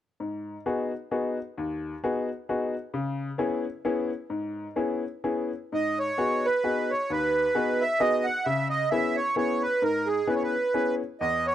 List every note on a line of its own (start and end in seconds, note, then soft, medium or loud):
0.20 0.55 G#2 soft
0.66 0.90 B3 soft
0.66 0.91 D#4 soft
0.66 0.90 F#4 soft
0.66 0.91 G#4 medium
1.11 1.36 B3 medium
1.11 1.36 D#4 soft
1.11 1.36 F#4 soft
1.11 1.36 G#4 soft
1.58 1.92 D#2 medium
2.04 2.28 B3 soft
2.04 2.28 D#4 soft
2.04 2.28 F#4 soft
2.04 2.28 G#4 medium
2.49 2.73 B3 soft
2.49 2.73 D#4 medium
2.49 2.73 F#4 soft
2.49 2.73 G#4 medium
2.94 3.28 C#3 medium
3.38 3.63 B3 medium
3.38 3.64 C#4 medium
3.38 3.64 E4 medium
3.38 3.64 G#4 medium
3.85 4.10 B3 medium
3.85 4.10 C#4 medium
3.85 4.10 E4 medium
3.85 4.10 G#4 medium
4.30 4.65 G#2 medium
4.76 5.02 B3 soft
4.76 5.02 C#4 soft
4.76 5.02 E4 soft
4.76 5.02 G#4 soft
5.24 5.50 B3 soft
5.24 5.50 C#4 soft
5.24 5.50 E4 soft
5.24 5.50 G#4 medium
5.72 6.07 G#2 medium
5.72 5.99 D#5 medium
5.99 6.46 C#5 medium
6.18 6.43 B3 soft
6.18 6.43 D#4 soft
6.18 6.43 F#4 soft
6.18 6.43 G#4 medium
6.45 6.92 B4 medium
6.64 6.89 B3 soft
6.64 6.89 D#4 soft
6.64 6.89 F#4 soft
6.64 6.89 G#4 medium
6.91 7.12 C#5 medium
7.10 7.45 D#2 medium
7.10 7.83 B4 medium
7.55 7.80 B3 medium
7.55 7.80 D#4 medium
7.55 7.80 F#4 soft
7.55 7.80 G#4 medium
7.81 8.02 E5 medium
8.00 8.25 B3 medium
8.00 8.25 D#4 medium
8.00 8.25 F#4 soft
8.00 8.25 G#4 medium
8.00 8.26 D#5 medium
8.24 8.46 F#5 medium
8.45 8.81 C#3 medium
8.45 8.68 E5 medium
8.70 8.90 D#5 medium
8.90 9.16 B3 soft
8.90 9.16 C#4 soft
8.90 9.16 E4 soft
8.90 9.16 G#4 medium
8.90 9.16 E5 medium
9.16 9.36 C#5 medium
9.36 9.61 B3 soft
9.36 9.62 C#4 soft
9.36 9.61 E4 soft
9.36 9.62 G#4 soft
9.36 9.63 C#5 medium
9.62 9.83 B4 medium
9.82 10.17 G#2 medium
9.82 10.08 A#4 medium
10.06 10.28 G#4 medium
10.27 10.52 B3 soft
10.27 10.53 C#4 soft
10.27 10.52 E4 soft
10.27 10.52 G#4 medium
10.27 10.35 B4 medium
10.35 10.43 C#5 soft
10.43 10.95 B4 medium
10.74 10.99 B3 soft
10.74 10.99 C#4 soft
10.74 10.99 E4 soft
10.74 10.99 G#4 medium
11.20 11.55 E2 soft
11.20 11.46 D#5 medium
11.47 11.55 C#5 medium